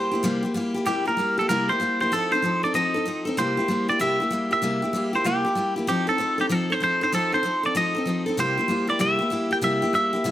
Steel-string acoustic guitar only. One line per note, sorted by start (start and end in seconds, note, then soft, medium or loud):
0.00 0.12 G3 medium
0.00 0.12 A#3 medium
0.00 0.12 E4 medium
0.00 0.10 G4 medium
0.12 0.23 A#3 medium
0.12 0.24 E4 medium
0.12 0.23 G4 medium
0.23 0.43 C3 medium
0.23 0.44 G3 medium
0.23 0.44 A#3 medium
0.23 0.43 E4 medium
0.23 0.41 G4 medium
0.43 0.54 A#3 medium
0.43 0.55 E4 medium
0.43 0.54 G4 medium
0.54 0.75 G3 medium
0.54 0.75 A#3 medium
0.54 0.75 E4 medium
0.54 0.73 G4 medium
0.74 0.86 A#3 medium
0.74 0.86 E4 medium
0.74 0.86 G4 medium
0.86 1.06 C3 medium
0.86 1.06 G3 medium
0.86 1.07 A#3 medium
0.86 1.06 E4 medium
0.86 1.04 G4 medium
1.05 1.17 A#3 soft
1.05 1.18 E4 soft
1.05 1.17 G4 medium
1.17 1.37 G3 medium
1.17 1.38 A#3 medium
1.17 1.38 E4 medium
1.17 1.36 G4 medium
1.38 1.49 A#3 soft
1.38 1.49 E4 soft
1.38 1.49 G4 medium
1.49 1.69 C3 medium
1.49 1.69 G3 medium
1.49 1.70 A#3 medium
1.49 1.69 E4 medium
1.49 1.68 G4 loud
1.69 1.80 A#3 soft
1.69 1.80 E4 soft
1.69 1.80 G4 medium
1.80 2.00 G3 medium
1.80 2.01 A#3 medium
1.80 2.01 E4 medium
1.80 1.99 G4 medium
2.00 2.12 A#3 soft
2.00 2.13 E4 soft
2.00 2.12 G4 soft
2.12 2.32 F3 medium
2.12 2.32 C4 medium
2.12 2.32 D#4 medium
2.12 2.30 A4 medium
2.32 2.42 C4 soft
2.32 2.43 D#4 medium
2.32 2.43 A4 medium
2.42 2.63 F3 medium
2.42 2.64 C4 medium
2.42 2.64 D#4 medium
2.42 2.62 A4 medium
2.63 2.74 C4 soft
2.63 2.74 D#4 medium
2.63 2.74 A4 medium
2.74 2.94 F3 medium
2.74 2.95 C4 medium
2.74 2.95 D#4 medium
2.74 2.93 A4 medium
2.94 3.05 C4 soft
2.94 3.07 D#4 soft
2.94 3.06 A4 medium
3.05 3.26 F3 medium
3.05 3.26 C4 medium
3.05 3.26 D#4 medium
3.05 3.24 A4 medium
3.25 3.38 C4 medium
3.25 3.38 D#4 medium
3.25 3.37 A4 medium
3.37 3.57 C3 medium
3.37 3.58 G3 medium
3.37 3.58 A#3 medium
3.37 3.58 E4 medium
3.37 3.56 G4 medium
3.57 3.68 A#3 soft
3.57 3.69 E4 medium
3.57 3.68 G4 medium
3.68 3.89 G3 medium
3.68 3.89 A#3 medium
3.68 3.89 E4 medium
3.68 3.87 G4 medium
3.88 3.99 A#3 soft
3.88 4.00 E4 medium
3.88 4.00 G4 medium
3.99 4.20 C3 medium
3.99 4.20 G3 medium
3.99 4.20 A#3 medium
3.99 4.21 E4 medium
3.99 4.19 G4 medium
4.20 4.31 A#3 soft
4.20 4.32 E4 soft
4.20 4.31 G4 medium
4.31 4.51 G3 medium
4.31 4.52 A#3 medium
4.31 4.51 E4 medium
4.31 4.50 G4 medium
4.51 4.62 A#3 soft
4.51 4.62 E4 medium
4.51 4.62 G4 medium
4.62 4.82 C3 medium
4.62 4.83 G3 medium
4.62 4.83 A#3 medium
4.62 4.83 E4 medium
4.62 4.81 G4 medium
4.82 4.93 A#3 soft
4.82 4.94 E4 medium
4.82 4.94 G4 medium
4.93 5.14 G3 medium
4.93 5.14 A#3 medium
4.93 5.14 E4 medium
4.93 5.12 G4 medium
5.13 5.25 A#3 soft
5.13 5.25 E4 soft
5.13 5.25 G4 medium
5.24 5.45 C3 medium
5.24 5.45 G3 medium
5.24 5.46 A#3 medium
5.24 5.45 E4 medium
5.24 5.43 G4 medium
5.45 5.55 A#3 soft
5.45 5.56 E4 medium
5.45 5.56 G4 medium
5.55 5.76 G3 medium
5.55 5.77 A#3 medium
5.55 5.76 E4 medium
5.55 5.75 G4 medium
5.76 5.88 A#3 soft
5.76 5.88 E4 medium
5.76 5.87 G4 medium
5.87 6.08 F3 medium
5.87 6.08 C4 medium
5.87 6.07 D#4 medium
5.87 6.06 A4 medium
6.07 6.18 C4 soft
6.07 6.19 D#4 soft
6.07 6.19 A4 medium
6.18 6.39 F3 medium
6.18 6.39 C4 medium
6.18 6.38 D#4 medium
6.18 6.37 A4 medium
6.38 6.49 C4 soft
6.38 6.50 D#4 medium
6.38 6.50 A4 medium
6.49 6.70 F3 medium
6.49 6.70 C4 medium
6.49 6.70 D#4 medium
6.49 6.69 A4 medium
6.70 6.81 C4 soft
6.70 6.82 D#4 soft
6.70 6.81 A4 soft
6.80 7.01 F3 medium
6.80 7.02 C4 medium
6.80 7.02 D#4 medium
6.80 7.00 A4 medium
7.01 7.12 C4 soft
7.01 7.13 D#4 soft
7.01 7.13 A4 medium
7.12 7.33 F3 medium
7.12 7.33 C4 medium
7.12 7.33 D#4 medium
7.12 7.31 A4 medium
7.32 7.43 C4 soft
7.32 7.44 D#4 medium
7.32 7.44 A4 medium
7.43 7.64 F3 medium
7.43 7.64 C4 medium
7.43 7.64 D#4 medium
7.43 7.62 A4 medium
7.63 7.74 C4 soft
7.63 7.75 D#4 soft
7.63 7.75 A4 medium
7.75 7.95 F3 medium
7.75 7.96 C4 medium
7.75 7.95 D#4 medium
7.75 7.93 A4 medium
7.95 8.06 C4 soft
7.95 8.07 D#4 medium
7.95 8.06 A4 medium
8.05 8.26 F3 medium
8.05 8.27 C4 medium
8.05 8.27 D#4 medium
8.05 8.25 A4 medium
8.26 8.38 C4 soft
8.26 8.38 D#4 medium
8.26 8.37 A4 medium
8.37 8.58 C3 medium
8.37 8.58 G3 medium
8.37 8.58 A#3 medium
8.37 8.58 E4 medium
8.37 8.56 G4 medium
8.58 8.68 A#3 soft
8.58 8.69 E4 medium
8.58 8.69 G4 medium
8.68 8.89 G3 medium
8.68 8.89 A#3 medium
8.68 8.88 E4 medium
8.68 8.86 G4 medium
8.87 8.99 A#3 soft
8.87 9.00 E4 medium
8.87 8.99 G4 medium
8.99 9.20 C3 medium
8.99 9.20 G3 medium
8.99 9.20 A#3 medium
8.99 9.19 E4 medium
8.99 9.18 G4 medium
9.19 9.30 A#3 soft
9.19 9.31 E4 soft
9.19 9.31 G4 medium
9.30 9.51 G3 medium
9.30 9.51 A#3 medium
9.30 9.51 E4 medium
9.30 9.49 G4 medium
9.51 9.61 A#3 soft
9.51 9.62 E4 soft
9.51 9.62 G4 medium
9.61 9.82 C3 medium
9.61 9.82 G3 medium
9.61 9.83 A#3 medium
9.61 9.82 E4 medium
9.61 9.81 G4 medium
9.82 9.93 A#3 soft
9.82 9.94 E4 medium
9.82 9.93 G4 medium
9.93 10.13 G3 medium
9.93 10.14 A#3 medium
9.93 10.13 E4 medium
9.93 10.12 G4 medium
10.13 10.24 A#3 soft
10.13 10.25 E4 medium
10.13 10.24 G4 medium
10.24 10.31 C3 medium
10.24 10.31 G3 medium
10.24 10.31 A#3 medium
10.24 10.31 E4 medium
10.24 10.31 G4 medium